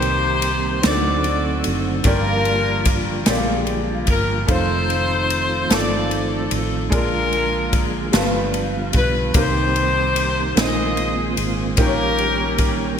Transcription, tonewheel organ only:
0.00 0.82 D#3 medium
0.00 0.82 G3 medium
0.00 0.82 A#3 medium
0.00 2.03 C4 medium
0.00 0.82 G4 medium
0.83 4.45 D3 medium
0.83 2.04 F#3 medium
0.83 2.05 A3 medium
0.83 2.04 D#4 medium
2.06 6.88 F3 medium
2.06 4.47 G3 medium
2.06 4.47 A#3 medium
2.06 8.10 F4 medium
4.49 6.90 D#3 medium
4.49 6.90 A3 medium
4.49 6.90 C4 medium
6.91 9.32 D3 medium
6.91 9.32 F3 medium
6.91 8.12 G#3 medium
6.91 8.12 A#3 medium
8.13 9.34 G3 medium
8.13 9.34 B3 medium
8.13 9.33 F4 medium
9.36 13.00 D#3 medium
9.36 10.56 G3 medium
9.36 10.56 A#3 medium
9.36 10.56 C4 medium
9.36 10.56 G4 medium
10.57 11.77 G#3 medium
10.57 13.00 A#3 medium
10.57 11.77 C4 medium
10.57 11.77 F4 medium
11.79 12.99 G3 medium
11.79 13.00 C#4 medium
11.79 13.00 G4 medium

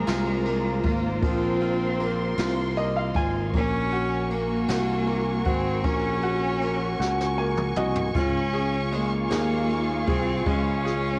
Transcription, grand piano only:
0.00 0.45 A#3 medium
0.00 0.07 F4 medium
0.07 0.83 F4 medium
0.45 1.95 A#3 medium
0.85 1.60 F4 soft
1.23 3.50 F3 medium
1.62 2.37 F4 medium
2.00 2.76 A#3 medium
2.39 3.15 F4 medium
2.77 3.52 A#3 medium
2.77 2.95 D#5 medium
2.97 3.14 F5 medium
3.16 3.53 F4 medium
3.16 3.51 G#5 medium
3.54 4.29 A#3 medium
3.93 4.68 F#4 medium
4.31 5.05 A#3 medium
4.69 5.44 F#4 medium
5.07 5.83 A#3 medium
5.46 6.22 F#4 medium
5.84 6.60 A#3 medium
6.23 6.98 F#4 medium
6.61 7.36 A#3 medium
7.00 7.76 F#4 medium
7.38 8.12 A#3 medium
7.38 7.74 G#5 medium
7.77 8.14 F#4 medium
7.77 8.13 D#5 medium
8.15 10.42 F4 medium
8.53 9.29 G#4 medium
8.92 10.42 G#3 medium
9.31 10.06 G#4 medium
10.08 10.83 G#4 medium
10.47 11.19 G#3 medium
10.85 11.19 G#4 medium

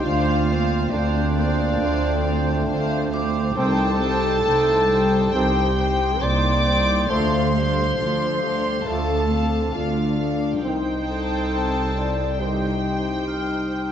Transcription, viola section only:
0.03 0.47 D4 medium
0.03 0.46 C5 medium
0.48 0.91 D4 soft
0.48 0.91 C5 soft
0.92 1.34 D4 soft
0.92 1.34 C5 medium
1.35 1.79 D4 soft
1.35 1.78 C5 soft
1.80 2.22 D4 medium
1.80 2.23 C5 medium
2.24 2.67 D4 medium
2.24 2.67 C5 soft
2.68 3.11 D4 medium
2.68 3.11 C5 medium
3.12 3.56 D4 medium
3.12 3.55 C5 soft
3.56 3.99 D#4 medium
3.56 3.99 C5 medium
4.00 4.43 D#4 medium
4.00 4.43 C5 medium
4.44 4.87 D#4 medium
4.44 4.87 C5 medium
4.88 5.31 D#4 soft
4.88 5.32 C5 soft
5.32 5.75 D#4 medium
5.32 5.76 C5 medium
5.77 6.20 D#4 soft
5.77 6.20 C5 soft
6.21 6.64 D#4 medium
6.21 6.64 C5 medium
6.65 7.08 D#4 soft
6.65 7.09 C5 soft
7.09 7.52 D4 medium
7.09 7.52 A4 medium
7.53 7.97 D4 medium
7.53 7.97 A4 soft
7.98 8.41 D4 soft
7.98 8.41 A4 soft
8.42 8.85 D4 soft
8.42 8.85 A4 soft
8.86 9.29 D4 soft
8.86 9.29 A4 soft
9.30 9.73 D4 soft
9.30 9.73 A4 soft
9.74 10.17 D4 soft
9.74 10.17 A4 soft
10.19 10.62 D4 soft
10.19 10.62 A4 soft
10.63 12.35 D#4 medium
10.63 12.35 C5 medium
12.38 13.92 D#4 soft
12.38 13.92 C5 soft

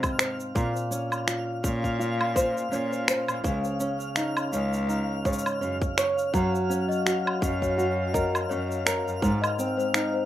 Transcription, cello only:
0.55 0.68 A#2 medium
1.64 2.62 A#2 loud
2.71 3.16 A#2 medium
3.28 3.38 A#2 medium
3.44 3.57 C#2 medium
4.53 5.15 C#2 loud
5.25 5.38 G#2 medium
5.61 5.74 F#2 medium
6.34 6.46 F#2 medium
7.42 8.41 F#2 loud
8.50 8.94 F#2 medium
9.06 9.16 F#2 medium
9.23 9.35 G#2 medium

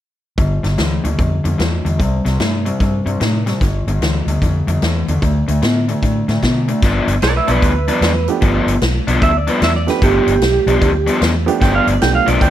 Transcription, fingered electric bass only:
0.38 0.58 G1 medium
0.64 0.75 G1 medium
0.78 0.98 D2 medium
1.04 1.15 D2 medium
1.18 1.38 F2 medium
1.45 1.56 F2 medium
1.59 1.79 E2 medium
1.85 1.96 E2 medium
1.99 2.19 C2 medium
2.25 2.36 C2 medium
2.40 2.70 G2 medium
2.80 3.00 G2 medium
3.06 3.17 G2 medium
3.21 3.52 A2 medium
3.61 3.81 G1 medium
3.87 3.98 G1 medium
4.01 4.20 D2 medium
4.26 4.38 D2 medium
4.42 4.61 F2 medium
4.67 4.78 F2 medium
4.82 5.02 E2 medium
5.08 5.19 E2 medium
5.22 5.42 D2 medium
5.48 5.59 D2 medium
5.62 5.93 A2 medium
6.03 6.22 A2 medium
6.28 6.39 A2 medium
6.42 6.73 B2 medium
6.83 6.99 G1 medium
7.07 7.17 G1 medium
7.22 7.39 B1 medium
7.48 7.57 B1 medium
7.63 7.88 D2 medium
8.01 8.27 E2 loud
8.42 8.59 G1 medium
8.66 8.76 G1 medium
8.81 8.98 B1 medium
9.07 9.17 B1 medium
9.21 9.47 D2 medium
9.62 9.87 E2 medium
10.02 10.19 G1 medium
10.27 10.36 G1 medium
10.41 10.58 B1 medium
10.66 10.76 B1 medium
10.81 11.07 D2 medium
11.21 11.47 E2 medium
11.61 11.78 G1 loud
11.87 11.96 G1 medium
12.02 12.18 B1 medium
12.27 12.36 B1 medium
12.41 12.50 D2 medium

